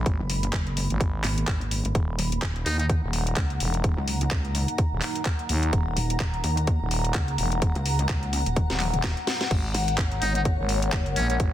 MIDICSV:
0, 0, Header, 1, 7, 480
1, 0, Start_track
1, 0, Tempo, 472441
1, 62, Time_signature, 4, 2, 24, 8
1, 11715, End_track
2, 0, Start_track
2, 0, Title_t, "Ambient pad"
2, 0, Program_c, 0, 92
2, 0, Note_on_c, 0, 83, 73
2, 1982, Note_off_c, 0, 83, 0
2, 2217, Note_on_c, 0, 78, 78
2, 2412, Note_on_c, 0, 82, 90
2, 9662, Note_off_c, 0, 82, 0
2, 9662, Note_on_c, 0, 73, 76
2, 11715, Note_off_c, 0, 73, 0
2, 11715, Note_off_c, 0, 78, 0
2, 11715, End_track
3, 0, Start_track
3, 0, Title_t, "Muted trumpet"
3, 0, Program_c, 1, 59
3, 2701, Note_on_c, 1, 63, 92
3, 2789, Note_off_c, 1, 63, 0
3, 2839, Note_on_c, 1, 63, 81
3, 2905, Note_off_c, 1, 63, 0
3, 10382, Note_on_c, 1, 63, 92
3, 10470, Note_off_c, 1, 63, 0
3, 10518, Note_on_c, 1, 63, 81
3, 10584, Note_off_c, 1, 63, 0
3, 11341, Note_on_c, 1, 61, 91
3, 11429, Note_off_c, 1, 61, 0
3, 11477, Note_on_c, 1, 61, 74
3, 11544, Note_off_c, 1, 61, 0
3, 11715, End_track
4, 0, Start_track
4, 0, Title_t, "Analog synth pad"
4, 0, Program_c, 2, 89
4, 0, Note_on_c, 2, 56, 83
4, 0, Note_on_c, 2, 58, 89
4, 0, Note_on_c, 2, 59, 73
4, 1941, Note_off_c, 2, 56, 0
4, 1941, Note_off_c, 2, 59, 0
4, 1982, Note_on_c, 2, 54, 81
4, 1982, Note_on_c, 2, 63, 70
4, 9621, Note_off_c, 2, 54, 0
4, 9621, Note_off_c, 2, 58, 0
4, 9621, Note_off_c, 2, 63, 0
4, 9662, Note_on_c, 2, 56, 85
4, 9662, Note_on_c, 2, 59, 75
4, 9663, Note_on_c, 2, 70, 87
4, 11715, Note_off_c, 2, 56, 0
4, 11715, Note_off_c, 2, 59, 0
4, 11715, Note_off_c, 2, 70, 0
4, 11715, End_track
5, 0, Start_track
5, 0, Title_t, "Wobble bass"
5, 0, Program_c, 3, 39
5, 198, Note_on_c, 3, 30, 101
5, 525, Note_off_c, 3, 30, 0
5, 541, Note_on_c, 3, 30, 99
5, 897, Note_off_c, 3, 30, 0
5, 1261, Note_on_c, 3, 32, 103
5, 1485, Note_off_c, 3, 32, 0
5, 1501, Note_on_c, 3, 32, 96
5, 1857, Note_off_c, 3, 32, 0
5, 1877, Note_on_c, 3, 32, 101
5, 1964, Note_off_c, 3, 32, 0
5, 2221, Note_on_c, 3, 27, 96
5, 2685, Note_off_c, 3, 27, 0
5, 2701, Note_on_c, 3, 39, 97
5, 3056, Note_off_c, 3, 39, 0
5, 3421, Note_on_c, 3, 37, 98
5, 3645, Note_off_c, 3, 37, 0
5, 4038, Note_on_c, 3, 37, 104
5, 4365, Note_off_c, 3, 37, 0
5, 4381, Note_on_c, 3, 37, 102
5, 4737, Note_off_c, 3, 37, 0
5, 6060, Note_on_c, 3, 27, 99
5, 6525, Note_off_c, 3, 27, 0
5, 6541, Note_on_c, 3, 39, 97
5, 6897, Note_off_c, 3, 39, 0
5, 7261, Note_on_c, 3, 37, 99
5, 7485, Note_off_c, 3, 37, 0
5, 7879, Note_on_c, 3, 37, 104
5, 8205, Note_off_c, 3, 37, 0
5, 8221, Note_on_c, 3, 37, 98
5, 8577, Note_off_c, 3, 37, 0
5, 8599, Note_on_c, 3, 27, 104
5, 8817, Note_off_c, 3, 27, 0
5, 9902, Note_on_c, 3, 32, 95
5, 10365, Note_off_c, 3, 32, 0
5, 10381, Note_on_c, 3, 32, 95
5, 10737, Note_off_c, 3, 32, 0
5, 11101, Note_on_c, 3, 30, 102
5, 11325, Note_off_c, 3, 30, 0
5, 11715, End_track
6, 0, Start_track
6, 0, Title_t, "FM bass"
6, 0, Program_c, 4, 39
6, 919, Note_on_c, 4, 32, 96
6, 1245, Note_off_c, 4, 32, 0
6, 1981, Note_on_c, 4, 27, 104
6, 2205, Note_off_c, 4, 27, 0
6, 3079, Note_on_c, 4, 27, 101
6, 3405, Note_off_c, 4, 27, 0
6, 3662, Note_on_c, 4, 28, 98
6, 3885, Note_off_c, 4, 28, 0
6, 4999, Note_on_c, 4, 27, 96
6, 5085, Note_off_c, 4, 27, 0
6, 5582, Note_on_c, 4, 39, 98
6, 5805, Note_off_c, 4, 39, 0
6, 5821, Note_on_c, 4, 27, 107
6, 6045, Note_off_c, 4, 27, 0
6, 6919, Note_on_c, 4, 27, 102
6, 7245, Note_off_c, 4, 27, 0
6, 7501, Note_on_c, 4, 28, 98
6, 7725, Note_off_c, 4, 28, 0
6, 7742, Note_on_c, 4, 27, 100
6, 7857, Note_off_c, 4, 27, 0
6, 8839, Note_on_c, 4, 27, 97
6, 9057, Note_off_c, 4, 27, 0
6, 9079, Note_on_c, 4, 27, 96
6, 9297, Note_off_c, 4, 27, 0
6, 9661, Note_on_c, 4, 32, 104
6, 9885, Note_off_c, 4, 32, 0
6, 10759, Note_on_c, 4, 32, 100
6, 11085, Note_off_c, 4, 32, 0
6, 11342, Note_on_c, 4, 34, 95
6, 11565, Note_off_c, 4, 34, 0
6, 11581, Note_on_c, 4, 32, 100
6, 11697, Note_off_c, 4, 32, 0
6, 11715, End_track
7, 0, Start_track
7, 0, Title_t, "Drums"
7, 61, Note_on_c, 9, 36, 127
7, 61, Note_on_c, 9, 42, 68
7, 162, Note_off_c, 9, 42, 0
7, 163, Note_off_c, 9, 36, 0
7, 301, Note_on_c, 9, 46, 118
7, 402, Note_off_c, 9, 46, 0
7, 438, Note_on_c, 9, 42, 52
7, 537, Note_on_c, 9, 39, 118
7, 540, Note_off_c, 9, 42, 0
7, 540, Note_on_c, 9, 42, 66
7, 541, Note_on_c, 9, 36, 125
7, 638, Note_off_c, 9, 39, 0
7, 642, Note_off_c, 9, 42, 0
7, 643, Note_off_c, 9, 36, 0
7, 678, Note_on_c, 9, 42, 36
7, 780, Note_off_c, 9, 42, 0
7, 781, Note_on_c, 9, 46, 106
7, 882, Note_off_c, 9, 46, 0
7, 918, Note_on_c, 9, 42, 48
7, 1019, Note_off_c, 9, 42, 0
7, 1021, Note_on_c, 9, 36, 125
7, 1021, Note_on_c, 9, 42, 61
7, 1123, Note_off_c, 9, 36, 0
7, 1123, Note_off_c, 9, 42, 0
7, 1258, Note_on_c, 9, 39, 59
7, 1262, Note_on_c, 9, 46, 109
7, 1360, Note_off_c, 9, 39, 0
7, 1363, Note_off_c, 9, 46, 0
7, 1399, Note_on_c, 9, 42, 51
7, 1498, Note_on_c, 9, 39, 118
7, 1501, Note_off_c, 9, 42, 0
7, 1501, Note_on_c, 9, 36, 127
7, 1502, Note_on_c, 9, 42, 64
7, 1600, Note_off_c, 9, 39, 0
7, 1603, Note_off_c, 9, 36, 0
7, 1603, Note_off_c, 9, 42, 0
7, 1639, Note_on_c, 9, 42, 38
7, 1740, Note_off_c, 9, 42, 0
7, 1741, Note_on_c, 9, 46, 105
7, 1842, Note_off_c, 9, 46, 0
7, 1878, Note_on_c, 9, 42, 50
7, 1980, Note_off_c, 9, 42, 0
7, 1981, Note_on_c, 9, 36, 118
7, 1981, Note_on_c, 9, 42, 66
7, 2083, Note_off_c, 9, 36, 0
7, 2083, Note_off_c, 9, 42, 0
7, 2221, Note_on_c, 9, 46, 111
7, 2323, Note_off_c, 9, 46, 0
7, 2359, Note_on_c, 9, 42, 54
7, 2458, Note_on_c, 9, 39, 116
7, 2460, Note_off_c, 9, 42, 0
7, 2461, Note_on_c, 9, 36, 118
7, 2462, Note_on_c, 9, 42, 68
7, 2560, Note_off_c, 9, 39, 0
7, 2563, Note_off_c, 9, 36, 0
7, 2563, Note_off_c, 9, 42, 0
7, 2599, Note_on_c, 9, 42, 34
7, 2701, Note_off_c, 9, 42, 0
7, 2702, Note_on_c, 9, 46, 107
7, 2803, Note_off_c, 9, 46, 0
7, 2840, Note_on_c, 9, 42, 54
7, 2941, Note_off_c, 9, 42, 0
7, 2941, Note_on_c, 9, 36, 116
7, 2942, Note_on_c, 9, 42, 64
7, 3043, Note_off_c, 9, 36, 0
7, 3044, Note_off_c, 9, 42, 0
7, 3182, Note_on_c, 9, 46, 99
7, 3283, Note_off_c, 9, 46, 0
7, 3319, Note_on_c, 9, 42, 54
7, 3418, Note_on_c, 9, 39, 114
7, 3421, Note_off_c, 9, 42, 0
7, 3421, Note_on_c, 9, 36, 127
7, 3422, Note_on_c, 9, 42, 64
7, 3520, Note_off_c, 9, 39, 0
7, 3523, Note_off_c, 9, 36, 0
7, 3523, Note_off_c, 9, 42, 0
7, 3559, Note_on_c, 9, 42, 36
7, 3660, Note_off_c, 9, 42, 0
7, 3661, Note_on_c, 9, 46, 108
7, 3762, Note_off_c, 9, 46, 0
7, 3798, Note_on_c, 9, 42, 49
7, 3900, Note_off_c, 9, 42, 0
7, 3901, Note_on_c, 9, 36, 113
7, 3901, Note_on_c, 9, 42, 67
7, 4003, Note_off_c, 9, 36, 0
7, 4003, Note_off_c, 9, 42, 0
7, 4141, Note_on_c, 9, 46, 105
7, 4242, Note_off_c, 9, 46, 0
7, 4278, Note_on_c, 9, 42, 56
7, 4377, Note_on_c, 9, 39, 114
7, 4380, Note_off_c, 9, 42, 0
7, 4381, Note_on_c, 9, 36, 115
7, 4381, Note_on_c, 9, 42, 68
7, 4479, Note_off_c, 9, 39, 0
7, 4482, Note_off_c, 9, 42, 0
7, 4483, Note_off_c, 9, 36, 0
7, 4518, Note_on_c, 9, 42, 35
7, 4620, Note_off_c, 9, 42, 0
7, 4620, Note_on_c, 9, 46, 104
7, 4722, Note_off_c, 9, 46, 0
7, 4757, Note_on_c, 9, 42, 53
7, 4859, Note_off_c, 9, 42, 0
7, 4860, Note_on_c, 9, 42, 63
7, 4861, Note_on_c, 9, 36, 118
7, 4961, Note_off_c, 9, 42, 0
7, 4963, Note_off_c, 9, 36, 0
7, 5097, Note_on_c, 9, 39, 61
7, 5100, Note_on_c, 9, 46, 104
7, 5198, Note_off_c, 9, 39, 0
7, 5202, Note_off_c, 9, 46, 0
7, 5237, Note_on_c, 9, 42, 51
7, 5337, Note_on_c, 9, 39, 117
7, 5339, Note_off_c, 9, 42, 0
7, 5341, Note_on_c, 9, 36, 120
7, 5341, Note_on_c, 9, 42, 65
7, 5439, Note_off_c, 9, 39, 0
7, 5442, Note_off_c, 9, 42, 0
7, 5443, Note_off_c, 9, 36, 0
7, 5478, Note_on_c, 9, 42, 40
7, 5579, Note_off_c, 9, 42, 0
7, 5580, Note_on_c, 9, 46, 108
7, 5682, Note_off_c, 9, 46, 0
7, 5717, Note_on_c, 9, 42, 54
7, 5819, Note_off_c, 9, 42, 0
7, 5821, Note_on_c, 9, 36, 120
7, 5821, Note_on_c, 9, 42, 69
7, 5922, Note_off_c, 9, 42, 0
7, 5923, Note_off_c, 9, 36, 0
7, 6061, Note_on_c, 9, 46, 106
7, 6163, Note_off_c, 9, 46, 0
7, 6198, Note_on_c, 9, 42, 57
7, 6297, Note_on_c, 9, 39, 119
7, 6300, Note_off_c, 9, 42, 0
7, 6301, Note_on_c, 9, 36, 115
7, 6301, Note_on_c, 9, 42, 73
7, 6399, Note_off_c, 9, 39, 0
7, 6402, Note_off_c, 9, 42, 0
7, 6403, Note_off_c, 9, 36, 0
7, 6438, Note_on_c, 9, 42, 37
7, 6540, Note_off_c, 9, 42, 0
7, 6540, Note_on_c, 9, 46, 100
7, 6642, Note_off_c, 9, 46, 0
7, 6678, Note_on_c, 9, 42, 55
7, 6779, Note_off_c, 9, 42, 0
7, 6780, Note_on_c, 9, 42, 71
7, 6781, Note_on_c, 9, 36, 118
7, 6882, Note_off_c, 9, 42, 0
7, 6883, Note_off_c, 9, 36, 0
7, 7020, Note_on_c, 9, 46, 105
7, 7122, Note_off_c, 9, 46, 0
7, 7158, Note_on_c, 9, 42, 55
7, 7257, Note_on_c, 9, 39, 120
7, 7260, Note_off_c, 9, 42, 0
7, 7260, Note_on_c, 9, 42, 68
7, 7261, Note_on_c, 9, 36, 126
7, 7358, Note_off_c, 9, 39, 0
7, 7362, Note_off_c, 9, 42, 0
7, 7363, Note_off_c, 9, 36, 0
7, 7398, Note_on_c, 9, 42, 39
7, 7499, Note_off_c, 9, 42, 0
7, 7501, Note_on_c, 9, 46, 102
7, 7602, Note_off_c, 9, 46, 0
7, 7638, Note_on_c, 9, 42, 52
7, 7739, Note_off_c, 9, 42, 0
7, 7740, Note_on_c, 9, 42, 75
7, 7742, Note_on_c, 9, 36, 115
7, 7842, Note_off_c, 9, 42, 0
7, 7843, Note_off_c, 9, 36, 0
7, 7878, Note_on_c, 9, 42, 38
7, 7980, Note_off_c, 9, 42, 0
7, 7981, Note_on_c, 9, 46, 102
7, 8083, Note_off_c, 9, 46, 0
7, 8119, Note_on_c, 9, 42, 55
7, 8218, Note_on_c, 9, 39, 123
7, 8220, Note_off_c, 9, 42, 0
7, 8221, Note_on_c, 9, 36, 116
7, 8221, Note_on_c, 9, 42, 75
7, 8320, Note_off_c, 9, 39, 0
7, 8323, Note_off_c, 9, 36, 0
7, 8323, Note_off_c, 9, 42, 0
7, 8359, Note_on_c, 9, 42, 39
7, 8461, Note_off_c, 9, 42, 0
7, 8462, Note_on_c, 9, 46, 107
7, 8564, Note_off_c, 9, 46, 0
7, 8599, Note_on_c, 9, 42, 54
7, 8701, Note_off_c, 9, 42, 0
7, 8701, Note_on_c, 9, 36, 118
7, 8701, Note_on_c, 9, 42, 70
7, 8701, Note_on_c, 9, 48, 64
7, 8803, Note_off_c, 9, 36, 0
7, 8803, Note_off_c, 9, 42, 0
7, 8803, Note_off_c, 9, 48, 0
7, 8839, Note_on_c, 9, 38, 60
7, 8839, Note_on_c, 9, 42, 39
7, 8938, Note_on_c, 9, 39, 61
7, 8940, Note_off_c, 9, 38, 0
7, 8940, Note_off_c, 9, 42, 0
7, 8942, Note_on_c, 9, 46, 104
7, 8942, Note_on_c, 9, 48, 74
7, 9040, Note_off_c, 9, 39, 0
7, 9043, Note_off_c, 9, 46, 0
7, 9043, Note_off_c, 9, 48, 0
7, 9079, Note_on_c, 9, 42, 54
7, 9079, Note_on_c, 9, 47, 69
7, 9178, Note_on_c, 9, 39, 127
7, 9181, Note_off_c, 9, 42, 0
7, 9181, Note_off_c, 9, 47, 0
7, 9181, Note_on_c, 9, 36, 124
7, 9181, Note_on_c, 9, 38, 91
7, 9181, Note_on_c, 9, 42, 71
7, 9279, Note_off_c, 9, 39, 0
7, 9283, Note_off_c, 9, 36, 0
7, 9283, Note_off_c, 9, 38, 0
7, 9283, Note_off_c, 9, 42, 0
7, 9319, Note_on_c, 9, 42, 42
7, 9420, Note_off_c, 9, 42, 0
7, 9421, Note_on_c, 9, 38, 101
7, 9421, Note_on_c, 9, 46, 104
7, 9523, Note_off_c, 9, 38, 0
7, 9523, Note_off_c, 9, 46, 0
7, 9558, Note_on_c, 9, 38, 90
7, 9558, Note_on_c, 9, 42, 57
7, 9660, Note_off_c, 9, 38, 0
7, 9660, Note_off_c, 9, 42, 0
7, 9661, Note_on_c, 9, 36, 123
7, 9661, Note_on_c, 9, 42, 72
7, 9661, Note_on_c, 9, 49, 78
7, 9763, Note_off_c, 9, 36, 0
7, 9763, Note_off_c, 9, 42, 0
7, 9763, Note_off_c, 9, 49, 0
7, 9901, Note_on_c, 9, 46, 111
7, 10002, Note_off_c, 9, 46, 0
7, 10038, Note_on_c, 9, 42, 56
7, 10137, Note_on_c, 9, 39, 122
7, 10140, Note_off_c, 9, 42, 0
7, 10140, Note_on_c, 9, 42, 72
7, 10141, Note_on_c, 9, 36, 124
7, 10238, Note_off_c, 9, 39, 0
7, 10242, Note_off_c, 9, 42, 0
7, 10243, Note_off_c, 9, 36, 0
7, 10277, Note_on_c, 9, 42, 38
7, 10379, Note_off_c, 9, 42, 0
7, 10380, Note_on_c, 9, 46, 109
7, 10481, Note_off_c, 9, 46, 0
7, 10517, Note_on_c, 9, 42, 54
7, 10619, Note_off_c, 9, 42, 0
7, 10620, Note_on_c, 9, 42, 70
7, 10621, Note_on_c, 9, 36, 122
7, 10722, Note_off_c, 9, 42, 0
7, 10723, Note_off_c, 9, 36, 0
7, 10860, Note_on_c, 9, 46, 104
7, 10962, Note_off_c, 9, 46, 0
7, 10997, Note_on_c, 9, 42, 57
7, 11097, Note_on_c, 9, 39, 127
7, 11099, Note_off_c, 9, 42, 0
7, 11100, Note_on_c, 9, 42, 71
7, 11101, Note_on_c, 9, 36, 127
7, 11198, Note_off_c, 9, 39, 0
7, 11202, Note_off_c, 9, 42, 0
7, 11203, Note_off_c, 9, 36, 0
7, 11238, Note_on_c, 9, 42, 42
7, 11339, Note_off_c, 9, 42, 0
7, 11340, Note_on_c, 9, 46, 112
7, 11442, Note_off_c, 9, 46, 0
7, 11478, Note_on_c, 9, 42, 55
7, 11580, Note_off_c, 9, 42, 0
7, 11580, Note_on_c, 9, 42, 72
7, 11581, Note_on_c, 9, 36, 127
7, 11682, Note_off_c, 9, 42, 0
7, 11683, Note_off_c, 9, 36, 0
7, 11715, End_track
0, 0, End_of_file